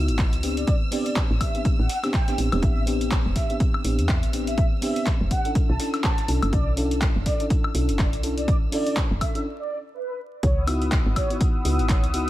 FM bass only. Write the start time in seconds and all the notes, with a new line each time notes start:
0.08 G#1
0.33 C#2
1.30 A1
1.79 A1
2.38 A1
2.52 E1
2.63 A1
3.25 E1
3.85 A1
3.99 E2
4.23 A1
5.21 E1
5.69 B1
6.28 B1
6.43 F#1
6.53 B1
7.16 F#1
7.75 B1
7.89 F#1
8.13 B1
9.11 F#1
10.43 C#2
11.06 G#1
11.65 C#2
11.79 G#1
12.03 C#2